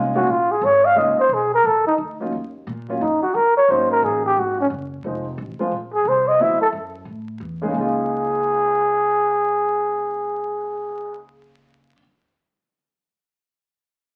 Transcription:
Already playing: upright bass C2, grand piano G#3 A#3 C#4 D#4 F4
0.15 grand piano G#3 A#3 C#4 D#4 F4, muted trumpet F#4
0.27 upright bass A#1, muted trumpet F4
0.51 muted trumpet G#4
0.61 upright bass G#1, muted trumpet C#5
0.85 muted trumpet F5
0.96 upright bass C#2, grand piano G#3 A#3 C#4 D#4 F4, muted trumpet D#5
1.18 muted trumpet C5, muted upright bass stroke
1.29 upright bass B1
1.34 muted trumpet G#4
1.54 muted trumpet A#4
1.64 upright bass A#1, muted trumpet A4
1.85 muted trumpet D#4, muted upright bass stroke
1.98 upright bass D2
2.20 grand piano F#3 A#3 C#4 D#4 F4
2.32 upright bass D#2
2.67 upright bass A#2
2.88 grand piano F#3 A#3 C#4 F4
3.01 upright bass F#2, muted trumpet D#4
3.22 muted trumpet F#4, muted upright bass stroke
3.34 upright bass D#2, muted trumpet A#4
3.57 muted trumpet C#5
3.68 upright bass G#1, grand piano F#3 A#3 C#4 D#4, muted trumpet C5
3.91 muted trumpet A#4
4.02 upright bass A1, muted trumpet G#4
4.25 muted trumpet G4
4.37 upright bass G#1, muted trumpet F#4
4.60 muted trumpet C#4
4.70 upright bass F#1
5.04 upright bass F1, grand piano F3 G#3 C4 D#4
5.38 upright bass A1
5.59 grand piano F3 G#3 C4 F4, muted upright bass stroke
5.71 upright bass A#1
5.94 muted trumpet G#4
6.05 upright bass C2, muted trumpet C5
6.28 muted trumpet D#5
6.40 upright bass D2, grand piano F#3 B3 C4 E4, muted trumpet E5
6.60 muted trumpet A4, muted upright bass stroke
6.73 upright bass F#2
7.05 upright bass A2
7.40 upright bass E2
7.62 grand piano C#3 G#3 A#3 D#4 G#4
7.68 grand piano C#3 G#3
7.74 upright bass C#2, grand piano A#3 D#4, muted trumpet G#4
7.81 grand piano F4

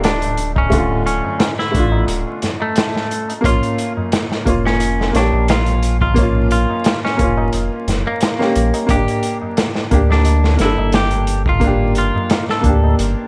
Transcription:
Already playing: sub bass D1, upright piano A3 D4 F4 G4 A4
0.04 clean electric guitar D4, snare, closed hi-hat, tabla na
0.21 closed hi-hat, tabla na
0.37 closed hi-hat
0.56 clean electric guitar C#4, kick, tabla na
0.70 upright piano D3 A3, kick, closed hi-hat, tabla na
0.77 upright piano F4
0.90 tabla na
1.06 clean electric guitar C#4, closed hi-hat
1.24 tabla na, tabla ge
1.39 snare, closed hi-hat, tabla na
1.58 clean electric guitar E4, snare, tabla na
1.71 sub bass A1, upright piano A3 D4, kick, closed hi-hat
1.79 upright piano F4
1.92 tabla na
2.07 sub bass D1, closed hi-hat, tabla na
2.27 tabla na
2.42 snare, closed hi-hat, tabla ge
2.60 clean electric guitar A3, tabla na
2.76 snare, closed hi-hat, tabla na
2.95 snare, tabla na
3.11 closed hi-hat
3.29 closed hi-hat, tabla na
3.41 sub bass A#1, upright piano A#3 C#4, kick, tabla na
3.45 clean electric guitar F4, upright piano F4, closed hi-hat
3.63 closed hi-hat, tabla na
3.78 closed hi-hat
3.97 tabla na, tabla ge
4.12 snare, closed hi-hat, tabla na
4.31 snare, tabla na
4.45 sub bass F1, upright piano A#3 C#4 F4, kick, closed hi-hat
4.65 clean electric guitar C#4, snare, tabla na
4.80 closed hi-hat, tabla na
5.00 snare, tabla na
5.12 sub bass A#1, upright piano A#3 C#5, snare, closed hi-hat
5.16 clean electric guitar D4, upright piano G4
5.32 sub bass A#1, tabla na
5.48 clean electric guitar F4, snare, closed hi-hat, tabla na
5.66 closed hi-hat, tabla na
5.83 closed hi-hat
6.01 clean electric guitar F4, kick, tabla na
6.14 upright piano A#3 C#4, kick, closed hi-hat, tabla na
6.22 upright piano F4
6.36 tabla na
6.51 clean electric guitar F4, closed hi-hat
6.69 tabla na, tabla ge
6.84 snare, closed hi-hat, tabla na
7.04 clean electric guitar C#4, snare, tabla na
7.17 sub bass F1, upright piano A#3 C#4, kick, closed hi-hat
7.24 upright piano F4
7.37 tabla na
7.53 sub bass F1, closed hi-hat, tabla na
7.72 tabla na
7.87 sub bass F1, snare, closed hi-hat, tabla ge
8.06 clean electric guitar A#3, tabla na
8.21 snare, closed hi-hat, tabla na
8.39 upright piano A#3 C#4 G4, snare, tabla na
8.55 sub bass A#1, closed hi-hat
8.74 closed hi-hat, tabla na
8.87 sub bass G1, upright piano A#3 D4, clean electric guitar G4, kick, closed hi-hat, tabla na
8.94 upright piano G4
9.08 closed hi-hat, tabla na
9.23 closed hi-hat
9.41 tabla na, tabla ge
9.57 snare, closed hi-hat, tabla na
9.75 snare, tabla na
9.91 sub bass D2, upright piano A#3 D4 G4, kick, closed hi-hat
10.10 clean electric guitar D4, snare, tabla na
10.25 closed hi-hat, tabla na
10.44 snare, tabla na
10.57 sub bass G1, upright piano A#3 D4, snare, closed hi-hat
10.62 clean electric guitar E4, upright piano A4
10.78 sub bass G1, tabla na
10.92 clean electric guitar G4, snare, closed hi-hat, tabla na
11.11 closed hi-hat, tabla na
11.27 closed hi-hat
11.46 clean electric guitar F4, kick, tabla na
11.60 upright piano A#3, kick, closed hi-hat, tabla na
11.64 upright piano D4 G4
11.81 tabla na
11.95 clean electric guitar F4, closed hi-hat
12.15 tabla na, tabla ge
12.30 snare, closed hi-hat, tabla na
12.49 clean electric guitar A4, snare, tabla na
12.61 sub bass D2, upright piano A#3 D4, kick, closed hi-hat
12.69 upright piano G4
12.84 tabla na
12.99 sub bass G1, closed hi-hat, tabla na
13.17 tabla na

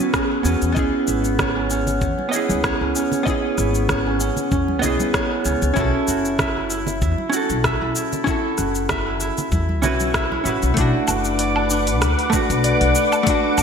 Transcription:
Already playing: hollow-body jazz guitar B3 C#4 F#4 B4, harp C#4 E4 G#4
0.00 cabasa
0.14 harp G#4, kick, cross-stick, cabasa
0.31 harp C#4
0.43 upright bass E2, hollow-body jazz guitar B3 C#4 F#4 B4, harp C#4, cabasa
0.62 upright bass E2, cabasa
0.72 hollow-body jazz guitar B3 D#5, cabasa
0.76 upright bass C#2, harp C#4, hollow-body jazz guitar E4 G#4, kick
1.08 upright bass G#1, harp E4, cabasa
1.25 cabasa
1.39 harp C#5, kick, cross-stick, low conga, cabasa
1.56 harp C#4
1.70 harp C#4, cabasa
1.87 low conga, cabasa
2.01 upright bass E2, harp C#4, kick, cabasa
2.19 high conga
2.29 hollow-body jazz guitar B3 D#5
2.33 harp E4, hollow-body jazz guitar E4 G#4, cabasa
2.49 upright bass C#2, high conga, cabasa
2.64 harp C#5, kick, cross-stick, cabasa
2.81 upright bass C#2, harp C#4
2.96 harp C#4, cabasa
3.12 low conga, cabasa
3.23 hollow-body jazz guitar B3 D#5, harp C#4, kick, cabasa
3.28 hollow-body jazz guitar E4 G#4
3.58 upright bass G#1, harp E4, cross-stick, cabasa
3.75 cabasa
3.89 harp C#5, kick, cross-stick, low conga, cabasa
4.06 harp C#4
4.20 harp C#4, cabasa
4.37 low conga, cabasa
4.52 upright bass E2, harp C#4, kick, cabasa
4.68 high conga
4.79 upright bass B1, hollow-body jazz guitar B3 D#5, harp E4, low conga, cabasa
4.84 hollow-body jazz guitar E4 G#4
5.00 high conga, cabasa
5.14 harp C#5, kick, cross-stick, cabasa
5.31 harp C#4
5.45 upright bass C#2, harp C#4, cabasa
5.62 upright bass C#2, cabasa
5.74 upright bass B1, hollow-body jazz guitar C#4 E4, harp E4, kick, cabasa
5.78 hollow-body jazz guitar F#4 A4
6.08 upright bass F#1, harp F#4, cabasa
6.25 cabasa
6.39 harp E5, kick, cross-stick, low conga, cabasa
6.56 harp E4
6.70 harp E4, cabasa
6.87 low conga, cabasa
7.02 upright bass E2, harp E4, kick, cabasa
7.18 high conga
7.29 hollow-body jazz guitar C#4 E4, harp F#4, cabasa
7.34 hollow-body jazz guitar F#4 A4
7.50 upright bass B1, high conga, cabasa
7.64 harp E5, kick, cross-stick, cabasa
7.81 upright bass B1, harp E4
7.96 harp E4, cabasa
8.13 low conga, cabasa
8.24 hollow-body jazz guitar C#4 E4, harp E4, kick, cabasa
8.28 hollow-body jazz guitar F#4 A4
8.58 upright bass F#1, harp F#4, cross-stick, cabasa
8.75 cabasa
8.89 harp E5, kick, cross-stick, low conga, cabasa
9.07 harp E4
9.21 harp E4, cabasa
9.38 low conga, cabasa
9.52 upright bass E2, harp E4, kick, high conga, cabasa
9.69 high conga
9.82 upright bass B1, hollow-body jazz guitar C#4 E4 F#4 B4, harp F#4, low conga, cabasa
10.00 high conga, cabasa
10.14 harp E5, kick, cross-stick, cabasa
10.32 harp E4, high conga
10.44 upright bass A1, hollow-body jazz guitar C#4 E4 F#4 B4, harp E4, cabasa
10.62 upright bass B1, cabasa
10.74 upright bass B1, hollow-body jazz guitar A3, harp D4, string machine B4 F#5 D6, kick, open hi-hat, cabasa
10.78 hollow-body jazz guitar D4 F#4
11.08 upright bass F#1, harp F#4, cabasa, low woodblock
11.25 cabasa
11.39 harp D5, open hi-hat, cabasa
11.56 harp D4, low woodblock
11.70 harp D4, cabasa
11.87 open hi-hat, cabasa
12.02 upright bass D2, harp D4, cross-stick, open hi-hat, cabasa
12.19 open hi-hat
12.30 hollow-body jazz guitar A3, harp F#4, kick, cabasa
12.34 hollow-body jazz guitar D4 F#4
12.50 upright bass B1, open hi-hat, cabasa
12.64 harp D5, open hi-hat, cabasa
12.81 upright bass B1, harp D4, open hi-hat
12.95 harp D4, cabasa
13.12 cabasa, low woodblock
13.23 hollow-body jazz guitar A3, harp D4, kick, open hi-hat, cabasa
13.28 hollow-body jazz guitar D4 F#4
13.58 upright bass F#1, harp F#4, cabasa, low woodblock

